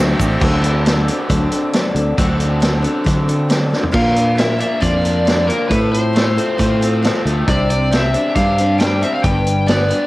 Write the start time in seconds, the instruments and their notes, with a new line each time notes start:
Already playing: fingered electric bass D2, steel-string acoustic guitar D3, overdriven electric guitar A3, string section F#4 C5 D5
0.00 steel-string acoustic guitar F#3 C4 D4 A4, overdriven electric guitar F#4
0.19 fingered electric bass A1, overdriven electric guitar A3 F#4, steel-string acoustic guitar C4 D4 A4, kick, ride, shaker
0.40 fingered electric bass D2, steel-string acoustic guitar D3 F#3 C4 D4 A4, overdriven electric guitar F#4, kick, crash
0.62 steel-string acoustic guitar C4 D4 A4, closed hi-hat
0.85 steel-string acoustic guitar F#3 C4 D4 A4, snare, closed hi-hat
1.08 steel-string acoustic guitar C4 D4 A4, closed hi-hat
1.29 fingered electric bass D2, steel-string acoustic guitar D3 F#3 C4 D4 A4, kick, closed hi-hat
1.52 steel-string acoustic guitar D4 A4, closed hi-hat
1.56 steel-string acoustic guitar C4
1.73 steel-string acoustic guitar F#3 C4 D4 A4, snare, closed hi-hat
1.95 fingered electric bass D2, steel-string acoustic guitar D4 A4, closed hi-hat
1.99 steel-string acoustic guitar C4
2.18 fingered electric bass D2, steel-string acoustic guitar D3 F#3 C4 D4 A4, overdriven electric guitar F#4, kick, closed hi-hat
2.38 steel-string acoustic guitar C4 D4 A4, closed hi-hat
2.60 steel-string acoustic guitar F#3 C4 D4 A4, snare, closed hi-hat
2.82 steel-string acoustic guitar C4 D4 A4, closed hi-hat
3.04 steel-string acoustic guitar D3 F#3 C4 D4 A4, fingered electric bass D3, kick, closed hi-hat
3.28 steel-string acoustic guitar C4 D4 A4, closed hi-hat
3.49 steel-string acoustic guitar F#3 C4 D4 A4, snare, closed hi-hat
3.70 steel-string acoustic guitar C4 D4 A4, snare
3.83 floor tom
3.92 steel-string acoustic guitar A#2 D3 F3 A#3 D4 A#4, fingered electric bass A#2, electric slide guitar F5, kick, crash
4.14 steel-string acoustic guitar F3 A#3 D4 A#4, closed hi-hat
4.35 steel-string acoustic guitar F3 A#3 D4 A#4, electric slide guitar E5, snare, closed hi-hat
4.57 steel-string acoustic guitar F3 A#3 D4 A#4, electric slide guitar E5, closed hi-hat
4.80 fingered electric bass F2, steel-string acoustic guitar A#2 D3 F3 A#3 D4 A#4, overdriven electric guitar F4, electric slide guitar D5, kick, closed hi-hat
5.01 steel-string acoustic guitar A#3 D4 A#4, closed hi-hat
5.06 steel-string acoustic guitar F3
5.25 overdriven electric guitar D3, steel-string acoustic guitar F3 A#3 D4 A#4, snare, closed hi-hat
5.47 steel-string acoustic guitar A#3 D4 A#4, electric slide guitar A#4, closed hi-hat
5.52 steel-string acoustic guitar F3
5.69 fingered electric bass A2, overdriven electric guitar A2, steel-string acoustic guitar A3, electric slide guitar B4, kick, closed hi-hat
5.73 steel-string acoustic guitar C4 F4 A4
5.91 steel-string acoustic guitar C4 F4 A4, electric slide guitar C5, closed hi-hat
6.13 steel-string acoustic guitar A3 C4 F4 A4, snare, closed hi-hat
6.37 steel-string acoustic guitar C4 F4 A4, closed hi-hat
6.58 fingered electric bass A2, steel-string acoustic guitar A3 C4 F4 A4, kick, closed hi-hat
6.81 steel-string acoustic guitar C4 F4 A4, closed hi-hat
7.02 overdriven electric guitar F3, steel-string acoustic guitar A3 C4 F4 A4, snare, closed hi-hat
7.25 fingered electric bass D2, overdriven electric guitar A3, steel-string acoustic guitar C4 F4 A4, closed hi-hat
7.47 fingered electric bass C2, steel-string acoustic guitar C3 G3 C4 D4 C5, electric slide guitar D5, kick, closed hi-hat
7.69 steel-string acoustic guitar C4 D4 C5, electric slide guitar D5, closed hi-hat
7.92 steel-string acoustic guitar G3 C4 D4, snare, closed hi-hat
7.96 steel-string acoustic guitar C5, electric slide guitar E5
8.13 steel-string acoustic guitar C4 D4 C5, closed hi-hat
8.35 fingered electric bass G2, steel-string acoustic guitar C3 G3 C4 D4 C5, overdriven electric guitar G4, electric slide guitar F5, kick, closed hi-hat
8.58 steel-string acoustic guitar C4 D4 C5, closed hi-hat
8.78 steel-string acoustic guitar G3 C4 D4 C5, electric slide guitar G5, snare, closed hi-hat
9.02 steel-string acoustic guitar C4 D4 C5, electric slide guitar E5, closed hi-hat
9.13 electric slide guitar F5
9.23 fingered electric bass G1, steel-string acoustic guitar G2 D3 G3 B3 D4 B4, electric slide guitar G5, kick, closed hi-hat
9.45 steel-string acoustic guitar G3 B3 D4 B4, closed hi-hat
9.66 steel-string acoustic guitar G3 B3 D4 B4, electric slide guitar D5, snare, closed hi-hat
9.89 steel-string acoustic guitar G3 B3 D4 B4, closed hi-hat